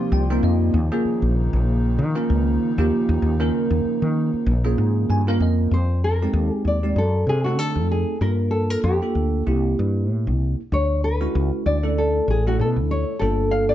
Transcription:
Already playing: analog synth pad C3 F3 G3 A#3 F4, tine electric piano A#3 C4 D#4 G4
0.12 fretless electric bass C2, tine electric piano G5
0.30 tine electric piano A#3 C4 D#4 F4
0.43 fretless electric bass F2, tine electric piano D#5
0.74 fretless electric bass D#2, analog synth pad C#3 D#3 D#4
0.92 tine electric piano A#3 C#4 F4 G#4
1.05 muted fretless electric bass stroke
1.22 fretless electric bass A#1
1.53 fretless electric bass A#1
1.99 fretless electric bass D#3
2.15 tine electric piano A#3 C#4 F4 A#4
2.30 fretless electric bass C#2
2.78 fretless electric bass D#2, tine electric piano A#3 C#4 F4 G4
3.09 fretless electric bass D#2
3.22 fretless electric bass D#2
3.40 tine electric piano A#3 C#4 F4 A#4
3.70 fretless electric bass D#2
3.85 muted fretless electric bass stroke
4.02 fretless electric bass D#3
4.33 muted fretless electric bass stroke
4.46 fretless electric bass A#1
4.65 tine electric piano A#3 C#4 F4 G#4
4.78 fretless electric bass G#2
5.09 fretless electric bass G2, tine electric piano G#5
5.28 tine electric piano A#3 C#4 F4 A#4 F5
5.40 fretless electric bass F2, tine electric piano D#5
5.71 fretless electric bass F2, nylon-string guitar C5
6.04 nylon-string guitar A#4
6.22 tine electric piano G#3 C4 D#4 G4
6.33 fretless electric bass D#2
6.53 nylon-string guitar G#4
6.65 fretless electric bass D#2, nylon-string guitar D5
6.83 tine electric piano G#3 C4 D#4 G4
6.96 fretless electric bass F#2, nylon-string guitar A4
7.27 fretless electric bass C3, nylon-string guitar G#4
7.44 tine electric piano A3 C4 D#4 A4, nylon-string guitar F#4
7.58 fretless electric bass D3, nylon-string guitar A4
7.76 fretless electric bass F2
7.91 nylon-string guitar G#4
8.21 fretless electric bass G2, tine electric piano A#3 D4 F4 A#4, nylon-string guitar A#4
8.51 nylon-string guitar A4
8.70 nylon-string guitar A#4
8.84 fretless electric bass F2, nylon-string guitar G4
9.02 tine electric piano A#3 D4 F4 A4
9.15 fretless electric bass D2
9.47 fretless electric bass C2, tine electric piano A#3 D4 E4 G4
9.79 fretless electric bass G2
10.10 fretless electric bass A2
10.27 fretless electric bass C2
10.72 fretless electric bass D2, nylon-string guitar C#5
11.04 nylon-string guitar B4
11.21 tine electric piano G#3 C#4 E4 F#4
11.35 fretless electric bass C#2
11.66 fretless electric bass D2, nylon-string guitar D5
11.83 tine electric piano A3 C#4 E4 A4
11.98 nylon-string guitar A4
12.28 fretless electric bass A1, nylon-string guitar G#4
12.47 tine electric piano A3 C#4 E4 A4, nylon-string guitar F#4
12.59 fretless electric bass B2, nylon-string guitar A4
12.76 fretless electric bass D2
12.91 nylon-string guitar C#5
13.19 fretless electric bass G1, tine electric piano A#3 D4 F4 A4, nylon-string guitar A4
13.51 nylon-string guitar F5
13.69 nylon-string guitar D5

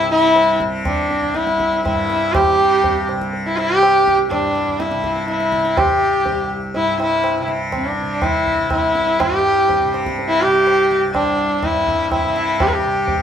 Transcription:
Already playing: tanpura C2 G2, sarangi E4
0.00 tanpura C3
0.11 sarangi E4
0.36 tabla na
0.60 tanpura C3, tabla ke
0.85 sarangi D4, tabla na, tabla ge
1.10 tabla te
1.22 tanpura C2, tabla ge
1.35 sarangi E4, tabla te
1.47 tabla te
1.60 tabla ke
1.73 tabla te
1.85 tanpura G2, sarangi E4, tabla na, tabla ge
2.10 tabla te
2.33 sarangi G4, tabla na, tabla ge
2.47 tanpura C3
2.84 tabla tin, tabla ge
3.08 tanpura C3, tabla na
3.21 tabla ke
3.33 tabla tin
3.46 sarangi E4
3.57 sarangi E4, tabla na
3.69 tanpura C2
3.77 sarangi G4
3.83 tabla na
4.08 tabla ke
4.28 tanpura G2, sarangi D4, tabla na, tabla ge
4.56 tabla te
4.68 tabla ge
4.80 sarangi E4, tabla te
4.91 tanpura C3, tabla te
5.04 tabla ke
5.16 tabla te
5.28 sarangi E4, tabla te
5.40 tabla te
5.52 tanpura C3, tabla ke
5.65 tabla te
5.77 sarangi G4, tabla na, tabla ge
6.14 tanpura C2
6.26 tabla tin, tabla ge
6.74 tanpura G2, sarangi E4, tabla tin
7.00 sarangi E4, tabla na
7.24 tabla na
7.38 tanpura C3
7.48 tabla ke
7.72 sarangi D4, tabla na, tabla ge
7.99 tanpura C3
8.22 sarangi E4, tabla na, tabla ge
8.46 tabla ge
8.60 tanpura C2
8.70 sarangi E4, tabla na, tabla ge
8.95 tabla te
9.20 tanpura G2, sarangi G4, tabla na, tabla ge
9.69 tabla tin, tabla ge
9.81 tanpura C3
9.94 tabla na
10.06 tabla ke
10.19 tabla tin
10.28 sarangi E4
10.42 tanpura C3, sarangi G4, tabla na
10.67 tabla na
10.91 tabla ke
11.04 tanpura C2
11.14 sarangi D4, tabla na, tabla ge
11.63 tanpura G2, sarangi E4, tabla na, tabla ge
11.87 tabla ge
12.12 sarangi E4, tabla na, tabla ge
12.24 tanpura C3
12.36 tabla te
12.60 sarangi G4, tabla na, tabla ge
12.67 sarangi B4
12.73 sarangi G4
12.83 tanpura C3
13.08 tabla tin, tabla ge

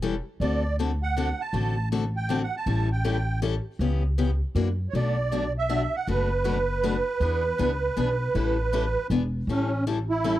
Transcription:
Already playing: upright bass E1
0.02 steel-string acoustic guitar E3 G3 C#4 E4 A4
0.40 upright bass D2, steel-string acoustic guitar D3 A3 C4 F#4 A4, accordion D5
0.79 steel-string acoustic guitar D3 A3 C4 F#4 A4
1.03 accordion F#5
1.17 steel-string acoustic guitar D3 A3 C4 F#4 A4
1.41 accordion A5
1.53 upright bass A1, steel-string acoustic guitar D3 A3 C4 F#4 A4
1.92 steel-string acoustic guitar D3 A3 C4 F#4 A4
2.17 accordion G5
2.29 steel-string acoustic guitar D3 A3 C4 F#4 A4
2.43 accordion F#5
2.57 accordion A5
2.66 upright bass A1, steel-string acoustic guitar E3 G3 C#4 E4 A4
2.92 accordion G5
3.05 steel-string acoustic guitar E3 G3 C#4 E4 A4
3.42 steel-string acoustic guitar E3 G3 C#4 E4 A4
3.79 upright bass C#2, steel-string acoustic guitar C#3 E3 B3 C#4 G4
4.18 steel-string acoustic guitar C#3 E3 B3 C#4 G4
4.55 upright bass F#2, steel-string acoustic guitar E3 A#3 D4 F#4
4.89 upright bass B1, accordion C#5
4.95 steel-string acoustic guitar B2 F#3 A3 D4 F#4, accordion D5
5.32 steel-string acoustic guitar B2 F#3 A3 D4 F#4
5.58 accordion E5
5.69 steel-string acoustic guitar B2 F#3 A3 D4 F#4
5.96 accordion F#5
6.07 upright bass F#1, steel-string acoustic guitar B2 F#3 A3 D4 F#4, accordion B4
6.44 steel-string acoustic guitar B2 F#3 A3 D4 F#4
6.83 steel-string acoustic guitar B2 F#3 A3 D4 F#4
7.20 upright bass E2, steel-string acoustic guitar E3 B3 D4 G#4
7.58 upright bass C#2, steel-string acoustic guitar E3 B3 D4 G#4
7.97 upright bass B1, steel-string acoustic guitar E3 B3 D4 G#4
8.35 upright bass A1, steel-string acoustic guitar E3 G3 C#4 E4 A4
8.73 steel-string acoustic guitar E3 G3 C#4 E4 A4
9.10 upright bass E1, steel-string acoustic guitar E3 B3 D4 G#4
9.47 upright bass A1, steel-string acoustic guitar E3 G3 C#4 E4 A4, accordion C#4
9.87 steel-string acoustic guitar E3 G3 C#4 E4 A4
10.10 accordion E4
10.24 steel-string acoustic guitar E3 G3 C#4 E4 A4

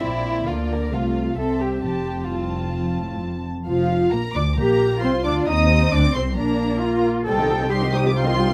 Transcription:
0.02 double bass section A#1, cello section A#2, viola section C4, violin section E4 D5
0.47 double bass section D2, cello section D3, viola section A#3, violin section F4 D5
0.71 violin section A#4
0.92 double bass section C2, cello section C3, viola section A3, violin section F4 F5
1.37 double bass section C2, cello section C3, viola section C4, violin section A4 E5
1.60 violin section G4
1.83 double bass section F1, cello section F2, viola section C4, violin section G4 A5
2.30 cello section C2, violin section F4 A5
2.77 cello section F2
3.00 cello section A2
3.23 cello section F2
3.67 double bass section F1, viola section F3, violin section F4 F5
4.12 double bass section A#1, viola section A#3, violin section A#4 A#5
4.35 double bass section D2, viola section D4, violin section D5 D6
4.58 double bass section A#1, viola section A#3, cello section G4, violin section A#4 A#5
5.02 double bass section C2, viola section C4, cello section F4, violin section C5 C6
5.24 double bass section D2, viola section D4, violin section D5 D6
5.48 double bass section D#2, cello section C4, viola section D#4, violin section D#5 D#6
5.92 double bass section D2, viola section D4, violin section D5 D6
6.15 double bass section C2, viola section C4, violin section C5 C6
6.37 double bass section A#1, viola section A#3, cello section D4, violin section A#4 A#5
6.82 cello section F4
7.26 double bass section C2, viola section G3 D#4, cello section A4, violin section C5 G5
7.38 viola section D#3 C4, violin section G4 D#5
7.49 viola section G3 D#4, violin section C5 G5
7.60 viola section D#3 C4, violin section G4 D#5
7.70 viola section G3 D#4, cello section G4, violin section C5 G5 C6
7.82 viola section D#3 C4, violin section G4 D#5
7.93 viola section G3 D#4, violin section C5 G5 D#6
8.04 viola section D#3 C4, violin section G4 D#5
8.09 violin section D6
8.14 viola section G3 D#4, cello section F4, violin section C5 G5 C6
8.25 viola section D#3 C4, violin section G4 D#5
8.37 viola section G3 D#4, violin section C5 G5
8.48 viola section D#3 C4, violin section G4 D#5

